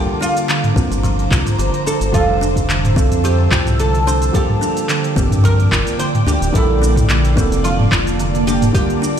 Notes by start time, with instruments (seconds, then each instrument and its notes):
Already playing: felt piano D3 A#3 F4, kalimba G3, oud G4, ambient pad C5 A#5 D6
0.21 kalimba D4, oud F4, shaker
0.37 open hi-hat, shaker
0.48 kalimba D3, clap, open hi-hat, shaker
0.64 mid tom, open hi-hat
0.74 analog synth bass C2, felt piano D3 A#3 F4, kalimba C4, kick, shaker
0.91 analog synth bass G1, open hi-hat, shaker
1.03 kalimba F3, kick, open hi-hat, shaker
1.19 open hi-hat
1.31 analog synth bass C2, kalimba F4, kick, clap, shaker
1.47 mid tom, open hi-hat, shaker
1.58 analog synth bass G1, kalimba D3, open hi-hat, shaker
1.74 open hi-hat
1.87 kalimba D4, oud A4, shaker
2.01 analog synth bass G1, open hi-hat, shaker
2.12 analog synth bass F1, felt piano F3 A4 E5, kalimba G3, oud F4, ambient pad A5 E6, kick, open hi-hat, shaker
2.41 kalimba D4, shaker
2.56 kick, open hi-hat, shaker
2.69 kalimba D3, clap, open hi-hat, shaker
2.85 mid tom, open hi-hat
2.94 analog synth bass C2, felt piano F3 E5, kalimba C4, kick, shaker
2.98 felt piano A4
3.11 analog synth bass F2, open hi-hat, shaker
3.24 kalimba F3, oud G4, open hi-hat, shaker
3.51 analog synth bass C2, kalimba F4, oud G4, kick, clap, shaker
3.67 mid tom, open hi-hat, shaker
3.79 kalimba D3, oud A4, open hi-hat, shaker
3.94 open hi-hat
4.07 kalimba D4, oud C5, shaker
4.22 open hi-hat, shaker
4.32 felt piano F3 A#3, kalimba G3, ambient pad A#3 D5 G5 D6, oud A4, kick, open hi-hat, shaker
4.36 felt piano G4
4.49 mid tom
4.61 kalimba D4, shaker
4.77 open hi-hat, shaker
4.89 kalimba D3, clap, open hi-hat, shaker
5.04 open hi-hat
5.15 analog synth bass G1, felt piano F3 A#3, kalimba C4, kick, shaker
5.19 felt piano G4
5.31 analog synth bass G2, mid tom, open hi-hat, shaker
5.44 kalimba F3, oud A#4, kick, open hi-hat, shaker
5.60 open hi-hat
5.72 analog synth bass G1, kalimba F4, kick, clap, shaker
5.87 open hi-hat, shaker
5.99 kalimba D3, oud C5, open hi-hat, shaker
6.15 mid tom, open hi-hat
6.26 analog synth bass D2, kalimba D4, oud G4, shaker
6.41 analog synth bass D1, open hi-hat, shaker
6.53 analog synth bass A#1, felt piano D3 A#3, kalimba G3, oud E4, ambient pad A5 D6, kick, open hi-hat, shaker
6.57 felt piano A4
6.82 kalimba D4, shaker
6.96 kick, mid tom, open hi-hat, shaker
7.09 kalimba D3, clap, open hi-hat, shaker
7.25 open hi-hat
7.36 analog synth bass F1, felt piano D3 A#3 A4, kalimba C4, kick, shaker
7.51 analog synth bass F1, open hi-hat, shaker
7.64 kalimba F3, oud F4, open hi-hat, shaker
7.79 mid tom
7.92 analog synth bass F1, kalimba F4, kick, clap, shaker
8.07 open hi-hat, shaker
8.19 kalimba D3, open hi-hat, shaker
8.35 open hi-hat
8.47 kalimba D4, oud G4, shaker
8.62 mid tom, open hi-hat, shaker
8.73 felt piano D3 A#3, kalimba G3, oud G4, kick, open hi-hat, shaker
8.77 felt piano F4
8.90 open hi-hat
9.02 kalimba D4, shaker